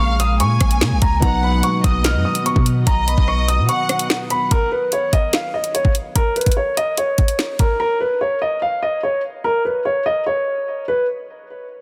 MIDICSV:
0, 0, Header, 1, 7, 480
1, 0, Start_track
1, 0, Tempo, 410959
1, 1430, Time_signature, 4, 2, 24, 8
1, 13801, End_track
2, 0, Start_track
2, 0, Title_t, "Violin section"
2, 0, Program_c, 0, 48
2, 0, Note_on_c, 0, 77, 113
2, 423, Note_off_c, 0, 77, 0
2, 470, Note_on_c, 0, 80, 94
2, 1383, Note_off_c, 0, 80, 0
2, 1431, Note_on_c, 0, 78, 105
2, 2107, Note_off_c, 0, 78, 0
2, 2150, Note_on_c, 0, 75, 89
2, 2827, Note_off_c, 0, 75, 0
2, 3350, Note_on_c, 0, 75, 97
2, 4263, Note_off_c, 0, 75, 0
2, 4310, Note_on_c, 0, 78, 91
2, 4761, Note_off_c, 0, 78, 0
2, 13801, End_track
3, 0, Start_track
3, 0, Title_t, "Grand piano"
3, 0, Program_c, 1, 0
3, 0, Note_on_c, 1, 85, 82
3, 192, Note_off_c, 1, 85, 0
3, 231, Note_on_c, 1, 87, 90
3, 433, Note_off_c, 1, 87, 0
3, 470, Note_on_c, 1, 85, 87
3, 1147, Note_off_c, 1, 85, 0
3, 1191, Note_on_c, 1, 82, 90
3, 1393, Note_off_c, 1, 82, 0
3, 1428, Note_on_c, 1, 82, 107
3, 1631, Note_off_c, 1, 82, 0
3, 1670, Note_on_c, 1, 83, 88
3, 1872, Note_off_c, 1, 83, 0
3, 1910, Note_on_c, 1, 85, 90
3, 2112, Note_off_c, 1, 85, 0
3, 2151, Note_on_c, 1, 87, 91
3, 2352, Note_off_c, 1, 87, 0
3, 2389, Note_on_c, 1, 89, 84
3, 2591, Note_off_c, 1, 89, 0
3, 2628, Note_on_c, 1, 87, 78
3, 2831, Note_off_c, 1, 87, 0
3, 2872, Note_on_c, 1, 85, 80
3, 3073, Note_off_c, 1, 85, 0
3, 3351, Note_on_c, 1, 82, 98
3, 3552, Note_off_c, 1, 82, 0
3, 3592, Note_on_c, 1, 83, 72
3, 3793, Note_off_c, 1, 83, 0
3, 3828, Note_on_c, 1, 85, 82
3, 4031, Note_off_c, 1, 85, 0
3, 4068, Note_on_c, 1, 87, 91
3, 4271, Note_off_c, 1, 87, 0
3, 4308, Note_on_c, 1, 85, 82
3, 4986, Note_off_c, 1, 85, 0
3, 5029, Note_on_c, 1, 83, 90
3, 5231, Note_off_c, 1, 83, 0
3, 5271, Note_on_c, 1, 70, 105
3, 5472, Note_off_c, 1, 70, 0
3, 5509, Note_on_c, 1, 71, 84
3, 5711, Note_off_c, 1, 71, 0
3, 5753, Note_on_c, 1, 73, 84
3, 5954, Note_off_c, 1, 73, 0
3, 5991, Note_on_c, 1, 75, 82
3, 6193, Note_off_c, 1, 75, 0
3, 6230, Note_on_c, 1, 77, 80
3, 6432, Note_off_c, 1, 77, 0
3, 6469, Note_on_c, 1, 75, 72
3, 6672, Note_off_c, 1, 75, 0
3, 6709, Note_on_c, 1, 73, 74
3, 6912, Note_off_c, 1, 73, 0
3, 7190, Note_on_c, 1, 70, 97
3, 7392, Note_off_c, 1, 70, 0
3, 7430, Note_on_c, 1, 71, 75
3, 7632, Note_off_c, 1, 71, 0
3, 7669, Note_on_c, 1, 73, 77
3, 7871, Note_off_c, 1, 73, 0
3, 7909, Note_on_c, 1, 75, 90
3, 8111, Note_off_c, 1, 75, 0
3, 8149, Note_on_c, 1, 73, 85
3, 8826, Note_off_c, 1, 73, 0
3, 8871, Note_on_c, 1, 70, 86
3, 9073, Note_off_c, 1, 70, 0
3, 9108, Note_on_c, 1, 70, 99
3, 9311, Note_off_c, 1, 70, 0
3, 9349, Note_on_c, 1, 71, 82
3, 9552, Note_off_c, 1, 71, 0
3, 9589, Note_on_c, 1, 73, 81
3, 9791, Note_off_c, 1, 73, 0
3, 9830, Note_on_c, 1, 75, 84
3, 10032, Note_off_c, 1, 75, 0
3, 10068, Note_on_c, 1, 77, 80
3, 10271, Note_off_c, 1, 77, 0
3, 10307, Note_on_c, 1, 75, 79
3, 10511, Note_off_c, 1, 75, 0
3, 10551, Note_on_c, 1, 73, 77
3, 10752, Note_off_c, 1, 73, 0
3, 11030, Note_on_c, 1, 70, 92
3, 11232, Note_off_c, 1, 70, 0
3, 11271, Note_on_c, 1, 71, 68
3, 11473, Note_off_c, 1, 71, 0
3, 11508, Note_on_c, 1, 73, 79
3, 11711, Note_off_c, 1, 73, 0
3, 11748, Note_on_c, 1, 75, 86
3, 11951, Note_off_c, 1, 75, 0
3, 11988, Note_on_c, 1, 73, 79
3, 12666, Note_off_c, 1, 73, 0
3, 12709, Note_on_c, 1, 71, 83
3, 12911, Note_off_c, 1, 71, 0
3, 13801, End_track
4, 0, Start_track
4, 0, Title_t, "Felt piano"
4, 0, Program_c, 2, 0
4, 0, Control_c, 2, 64, 127
4, 0, Note_on_c, 2, 58, 69
4, 0, Note_on_c, 2, 65, 60
4, 0, Note_on_c, 2, 68, 68
4, 0, Note_on_c, 2, 73, 73
4, 1370, Note_off_c, 2, 58, 0
4, 1379, Note_off_c, 2, 65, 0
4, 1388, Note_off_c, 2, 68, 0
4, 1396, Note_off_c, 2, 73, 0
4, 1404, Note_on_c, 2, 47, 72
4, 1421, Note_on_c, 2, 54, 73
4, 1439, Note_on_c, 2, 63, 66
4, 1442, Control_c, 2, 64, 0
4, 1457, Note_on_c, 2, 71, 69
4, 1641, Control_c, 2, 64, 127
4, 5210, Note_off_c, 2, 47, 0
4, 5219, Note_off_c, 2, 54, 0
4, 5228, Note_off_c, 2, 63, 0
4, 5236, Note_off_c, 2, 71, 0
4, 5287, Control_c, 2, 64, 0
4, 13801, End_track
5, 0, Start_track
5, 0, Title_t, "Ambient pad"
5, 0, Program_c, 3, 92
5, 0, Note_on_c, 3, 49, 83
5, 0, Note_on_c, 3, 56, 76
5, 0, Note_on_c, 3, 58, 91
5, 1391, Note_off_c, 3, 49, 0
5, 1391, Note_off_c, 3, 56, 0
5, 1391, Note_off_c, 3, 58, 0
5, 1430, Note_on_c, 3, 51, 82
5, 1430, Note_on_c, 3, 54, 74
5, 1430, Note_on_c, 3, 59, 91
5, 5231, Note_off_c, 3, 51, 0
5, 5231, Note_off_c, 3, 54, 0
5, 5232, Note_off_c, 3, 59, 0
5, 13801, End_track
6, 0, Start_track
6, 0, Title_t, "808-style bass"
6, 0, Program_c, 4, 38
6, 0, Note_on_c, 4, 34, 106
6, 470, Note_on_c, 4, 46, 100
6, 488, Note_off_c, 4, 34, 0
6, 698, Note_off_c, 4, 46, 0
6, 710, Note_on_c, 4, 34, 112
6, 950, Note_on_c, 4, 49, 104
6, 968, Note_off_c, 4, 34, 0
6, 1070, Note_on_c, 4, 34, 104
6, 1088, Note_off_c, 4, 49, 0
6, 1184, Note_off_c, 4, 34, 0
6, 1190, Note_on_c, 4, 37, 105
6, 1420, Note_off_c, 4, 37, 0
6, 1430, Note_on_c, 4, 35, 111
6, 1891, Note_off_c, 4, 35, 0
6, 2150, Note_on_c, 4, 35, 107
6, 2510, Note_on_c, 4, 42, 102
6, 2528, Note_off_c, 4, 35, 0
6, 2624, Note_off_c, 4, 42, 0
6, 2990, Note_on_c, 4, 47, 103
6, 3335, Note_off_c, 4, 47, 0
6, 3350, Note_on_c, 4, 35, 111
6, 3695, Note_off_c, 4, 35, 0
6, 3710, Note_on_c, 4, 35, 105
6, 4190, Note_on_c, 4, 47, 100
6, 4207, Note_off_c, 4, 35, 0
6, 4304, Note_off_c, 4, 47, 0
6, 13801, End_track
7, 0, Start_track
7, 0, Title_t, "Drums"
7, 231, Note_on_c, 9, 42, 80
7, 348, Note_off_c, 9, 42, 0
7, 467, Note_on_c, 9, 42, 79
7, 584, Note_off_c, 9, 42, 0
7, 707, Note_on_c, 9, 42, 78
7, 709, Note_on_c, 9, 37, 97
7, 710, Note_on_c, 9, 36, 100
7, 824, Note_off_c, 9, 42, 0
7, 826, Note_off_c, 9, 37, 0
7, 826, Note_on_c, 9, 42, 79
7, 827, Note_off_c, 9, 36, 0
7, 942, Note_off_c, 9, 42, 0
7, 950, Note_on_c, 9, 38, 121
7, 963, Note_on_c, 9, 26, 95
7, 1067, Note_off_c, 9, 38, 0
7, 1080, Note_off_c, 9, 26, 0
7, 1188, Note_on_c, 9, 42, 77
7, 1190, Note_on_c, 9, 36, 111
7, 1305, Note_off_c, 9, 42, 0
7, 1307, Note_off_c, 9, 36, 0
7, 1430, Note_on_c, 9, 36, 112
7, 1430, Note_on_c, 9, 42, 92
7, 1547, Note_off_c, 9, 36, 0
7, 1547, Note_off_c, 9, 42, 0
7, 1905, Note_on_c, 9, 42, 82
7, 2022, Note_off_c, 9, 42, 0
7, 2150, Note_on_c, 9, 36, 91
7, 2151, Note_on_c, 9, 42, 82
7, 2267, Note_off_c, 9, 36, 0
7, 2268, Note_off_c, 9, 42, 0
7, 2387, Note_on_c, 9, 42, 79
7, 2391, Note_on_c, 9, 38, 113
7, 2403, Note_on_c, 9, 26, 92
7, 2504, Note_off_c, 9, 42, 0
7, 2507, Note_off_c, 9, 38, 0
7, 2520, Note_off_c, 9, 26, 0
7, 2745, Note_on_c, 9, 42, 72
7, 2862, Note_off_c, 9, 42, 0
7, 2873, Note_on_c, 9, 42, 83
7, 2989, Note_off_c, 9, 42, 0
7, 2990, Note_on_c, 9, 36, 106
7, 3107, Note_off_c, 9, 36, 0
7, 3107, Note_on_c, 9, 42, 76
7, 3224, Note_off_c, 9, 42, 0
7, 3349, Note_on_c, 9, 42, 92
7, 3350, Note_on_c, 9, 36, 115
7, 3466, Note_off_c, 9, 42, 0
7, 3467, Note_off_c, 9, 36, 0
7, 3594, Note_on_c, 9, 42, 76
7, 3710, Note_on_c, 9, 36, 91
7, 3711, Note_off_c, 9, 42, 0
7, 3827, Note_off_c, 9, 36, 0
7, 3830, Note_on_c, 9, 37, 68
7, 3947, Note_off_c, 9, 37, 0
7, 4070, Note_on_c, 9, 42, 81
7, 4187, Note_off_c, 9, 42, 0
7, 4306, Note_on_c, 9, 42, 80
7, 4423, Note_off_c, 9, 42, 0
7, 4547, Note_on_c, 9, 42, 78
7, 4549, Note_on_c, 9, 37, 98
7, 4663, Note_off_c, 9, 42, 0
7, 4665, Note_on_c, 9, 42, 77
7, 4666, Note_off_c, 9, 37, 0
7, 4782, Note_off_c, 9, 42, 0
7, 4789, Note_on_c, 9, 38, 116
7, 4802, Note_on_c, 9, 26, 95
7, 4906, Note_off_c, 9, 38, 0
7, 4919, Note_off_c, 9, 26, 0
7, 5027, Note_on_c, 9, 42, 75
7, 5144, Note_off_c, 9, 42, 0
7, 5269, Note_on_c, 9, 42, 85
7, 5270, Note_on_c, 9, 36, 108
7, 5386, Note_off_c, 9, 36, 0
7, 5386, Note_off_c, 9, 42, 0
7, 5745, Note_on_c, 9, 42, 74
7, 5862, Note_off_c, 9, 42, 0
7, 5990, Note_on_c, 9, 36, 82
7, 5990, Note_on_c, 9, 42, 75
7, 6106, Note_off_c, 9, 36, 0
7, 6107, Note_off_c, 9, 42, 0
7, 6226, Note_on_c, 9, 42, 77
7, 6230, Note_on_c, 9, 38, 110
7, 6243, Note_on_c, 9, 26, 90
7, 6343, Note_off_c, 9, 42, 0
7, 6347, Note_off_c, 9, 38, 0
7, 6360, Note_off_c, 9, 26, 0
7, 6585, Note_on_c, 9, 42, 69
7, 6702, Note_off_c, 9, 42, 0
7, 6712, Note_on_c, 9, 42, 75
7, 6829, Note_off_c, 9, 42, 0
7, 6830, Note_on_c, 9, 36, 95
7, 6947, Note_off_c, 9, 36, 0
7, 6948, Note_on_c, 9, 42, 73
7, 7065, Note_off_c, 9, 42, 0
7, 7190, Note_on_c, 9, 36, 108
7, 7190, Note_on_c, 9, 42, 88
7, 7306, Note_off_c, 9, 36, 0
7, 7306, Note_off_c, 9, 42, 0
7, 7430, Note_on_c, 9, 42, 46
7, 7490, Note_off_c, 9, 42, 0
7, 7490, Note_on_c, 9, 42, 56
7, 7550, Note_off_c, 9, 42, 0
7, 7550, Note_on_c, 9, 36, 86
7, 7550, Note_on_c, 9, 42, 67
7, 7610, Note_off_c, 9, 42, 0
7, 7610, Note_on_c, 9, 42, 76
7, 7667, Note_off_c, 9, 36, 0
7, 7727, Note_off_c, 9, 42, 0
7, 7911, Note_on_c, 9, 42, 75
7, 8028, Note_off_c, 9, 42, 0
7, 8146, Note_on_c, 9, 42, 76
7, 8263, Note_off_c, 9, 42, 0
7, 8387, Note_on_c, 9, 42, 76
7, 8390, Note_on_c, 9, 36, 95
7, 8504, Note_off_c, 9, 42, 0
7, 8505, Note_on_c, 9, 42, 74
7, 8507, Note_off_c, 9, 36, 0
7, 8622, Note_off_c, 9, 42, 0
7, 8630, Note_on_c, 9, 38, 119
7, 8643, Note_on_c, 9, 26, 91
7, 8747, Note_off_c, 9, 38, 0
7, 8760, Note_off_c, 9, 26, 0
7, 8868, Note_on_c, 9, 42, 71
7, 8870, Note_on_c, 9, 36, 106
7, 8984, Note_off_c, 9, 42, 0
7, 8987, Note_off_c, 9, 36, 0
7, 13801, End_track
0, 0, End_of_file